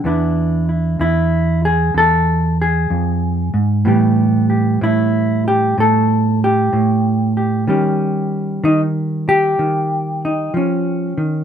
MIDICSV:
0, 0, Header, 1, 2, 480
1, 0, Start_track
1, 0, Tempo, 953895
1, 22, Time_signature, 4, 2, 24, 8
1, 5758, End_track
2, 0, Start_track
2, 0, Title_t, "Hollow-body jazz guitar"
2, 0, Program_c, 0, 26
2, 20, Note_on_c, 0, 40, 61
2, 25, Note_on_c, 0, 52, 47
2, 29, Note_on_c, 0, 59, 42
2, 32, Note_on_c, 0, 62, 47
2, 36, Note_on_c, 0, 64, 42
2, 345, Note_off_c, 0, 64, 0
2, 347, Note_on_c, 0, 64, 37
2, 494, Note_off_c, 0, 40, 0
2, 500, Note_on_c, 0, 40, 70
2, 506, Note_off_c, 0, 64, 0
2, 508, Note_on_c, 0, 64, 88
2, 825, Note_off_c, 0, 64, 0
2, 831, Note_on_c, 0, 68, 91
2, 972, Note_off_c, 0, 40, 0
2, 978, Note_on_c, 0, 40, 62
2, 985, Note_off_c, 0, 68, 0
2, 995, Note_on_c, 0, 69, 105
2, 1309, Note_off_c, 0, 69, 0
2, 1316, Note_on_c, 0, 68, 80
2, 1459, Note_off_c, 0, 40, 0
2, 1461, Note_on_c, 0, 41, 58
2, 1778, Note_off_c, 0, 41, 0
2, 1780, Note_on_c, 0, 44, 58
2, 1921, Note_off_c, 0, 52, 0
2, 1923, Note_off_c, 0, 59, 0
2, 1925, Note_off_c, 0, 62, 0
2, 1937, Note_on_c, 0, 45, 71
2, 1939, Note_off_c, 0, 44, 0
2, 1940, Note_on_c, 0, 52, 43
2, 1944, Note_on_c, 0, 55, 47
2, 1947, Note_off_c, 0, 68, 0
2, 1949, Note_on_c, 0, 59, 44
2, 1951, Note_on_c, 0, 67, 46
2, 2261, Note_off_c, 0, 67, 0
2, 2263, Note_on_c, 0, 67, 43
2, 2416, Note_off_c, 0, 45, 0
2, 2422, Note_on_c, 0, 45, 67
2, 2431, Note_off_c, 0, 67, 0
2, 2433, Note_on_c, 0, 64, 84
2, 2747, Note_off_c, 0, 64, 0
2, 2756, Note_on_c, 0, 67, 87
2, 2901, Note_off_c, 0, 45, 0
2, 2907, Note_off_c, 0, 67, 0
2, 2907, Note_on_c, 0, 45, 67
2, 2920, Note_on_c, 0, 69, 104
2, 3231, Note_off_c, 0, 69, 0
2, 3241, Note_on_c, 0, 67, 82
2, 3380, Note_off_c, 0, 45, 0
2, 3386, Note_on_c, 0, 45, 65
2, 3703, Note_off_c, 0, 67, 0
2, 3709, Note_on_c, 0, 67, 42
2, 3842, Note_off_c, 0, 52, 0
2, 3845, Note_off_c, 0, 67, 0
2, 3861, Note_off_c, 0, 55, 0
2, 3862, Note_on_c, 0, 51, 62
2, 3863, Note_off_c, 0, 45, 0
2, 3865, Note_off_c, 0, 59, 0
2, 3867, Note_on_c, 0, 55, 49
2, 3870, Note_on_c, 0, 61, 46
2, 3873, Note_on_c, 0, 67, 47
2, 4339, Note_off_c, 0, 51, 0
2, 4346, Note_off_c, 0, 61, 0
2, 4346, Note_on_c, 0, 51, 60
2, 4352, Note_on_c, 0, 63, 98
2, 4432, Note_off_c, 0, 63, 0
2, 4667, Note_off_c, 0, 67, 0
2, 4673, Note_on_c, 0, 67, 99
2, 4820, Note_off_c, 0, 51, 0
2, 4826, Note_on_c, 0, 51, 61
2, 5157, Note_on_c, 0, 63, 74
2, 5301, Note_off_c, 0, 51, 0
2, 5303, Note_on_c, 0, 53, 57
2, 5309, Note_off_c, 0, 63, 0
2, 5318, Note_on_c, 0, 61, 66
2, 5621, Note_off_c, 0, 53, 0
2, 5624, Note_on_c, 0, 51, 54
2, 5629, Note_off_c, 0, 67, 0
2, 5758, Note_off_c, 0, 51, 0
2, 5758, Note_off_c, 0, 55, 0
2, 5758, Note_off_c, 0, 61, 0
2, 5758, End_track
0, 0, End_of_file